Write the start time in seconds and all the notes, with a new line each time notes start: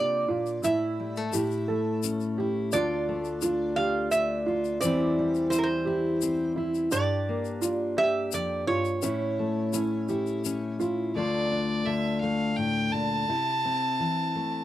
Already playing: C3 A#3 D4 F4 G4 D5
0.28 A#2 F4
0.46 shaker
0.64 A2 E4 E5, shaker
1.00 G3
1.16 A3, shaker
1.33 A2 E4 G4, shaker
1.51 shaker
1.68 A3 A4
2.03 C#4, shaker
2.20 shaker
2.38 E4 G4
2.72 D2 D4 F4 D5, shaker
3.09 A3
3.25 shaker
3.42 D4 F4, shaker
3.76 F4 G4 F5
4.11 D4 E5, shaker
4.46 F4
4.65 shaker
4.81 E2 E3 G3 C4 D5, shaker
4.85 E4
5.19 G3
5.35 shaker
5.50 C4 E4 C5, shaker
5.58 A#4
5.63 C5
5.85 E4 G4
6.22 C4, shaker
6.56 E4
6.74 shaker
6.91 G2 D4 G4 D5, shaker
7.29 A#3
7.45 shaker
7.62 D4 F4, shaker
7.97 G4 E5
8.32 F2 D5, shaker
8.67 G2 F4 C#5
8.85 shaker
9.02 A2 C#4 E4, shaker
9.39 A3
9.73 C#4 E4, shaker
10.09 E4 G4, shaker
10.27 shaker
10.45 C#4, shaker
10.80 E4 F4, shaker
11.15 D2 D3 A3 D4 F4 D5
11.51 D4
11.85 D3 E5
12.20 A3 F5
12.56 A2 G5
12.92 A#2 A5
13.29 C3 E4
13.65 C4
14.00 E3
14.35 A3